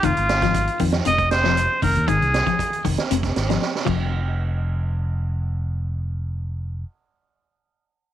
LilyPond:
<<
  \new Staff \with { instrumentName = "Trumpet" } { \time 4/4 \key f \minor \tempo 4 = 118 f'4. r8 ees''8 c''4 bes'8 | aes'4. r2 r8 | r1 | r1 | }
  \new Staff \with { instrumentName = "Clean electric guitar" } { \clef bass \time 4/4 \key f \minor ees8 r16 f8 r16 ees8 c8 r16 f8 r16 ees8 | ees8 r16 f8 r16 ees8 c8 r16 f8 r16 f8~ | f8 r2. r8 | r1 | }
  \new Staff \with { instrumentName = "Fingered electric bass" } { \clef bass \time 4/4 \key f \minor f,,16 aes,,4~ aes,,16 f,8 f,,4. f,,16 ees,16 | aes,,16 c,8 r8. f,,16 r16 f,,8 aes,,8 r8 f,,8~ | f,,1~ | f,,1 | }
  \new DrumStaff \with { instrumentName = "Drums" } \drummode { \time 4/4 <hh bd>16 hh16 <hh sn>16 <hh bd sn>16 <hh bd>16 hh16 <hho bd>16 <hh sn>16 hh16 <hh bd>16 <hh sn>16 sn16 hh8 <hho bd>16 hh16 | <hh bd>16 hh16 <hh sn>16 <hh bd>16 <hh bd>16 hh16 <hho bd>16 <hh sn>16 hh16 <hh bd sn>16 <hh sn>16 <hh sn>16 sn16 sn16 <cymc bd>8 | r4 r4 r4 r4 | r4 r4 r4 r4 | }
>>